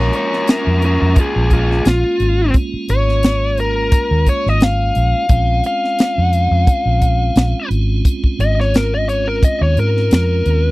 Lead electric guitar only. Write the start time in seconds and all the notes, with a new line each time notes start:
Already playing: A#4 C#5
0.16 A#4 C#5
0.50 C#4 A#4
0.85 C#4 A#4
1.19 F4 G#4
1.53 F4 G#4
1.88 F4
2.90 C#5
3.60 A#4
4.29 C#5
4.49 D#5
4.63 F5
5.67 F5
8.41 D#5
8.61 C#5
8.76 A#4
8.94 D#5
9.09 C#5
9.28 A#4
9.44 D#5
9.63 C#5
9.79 A#4
10.14 A#4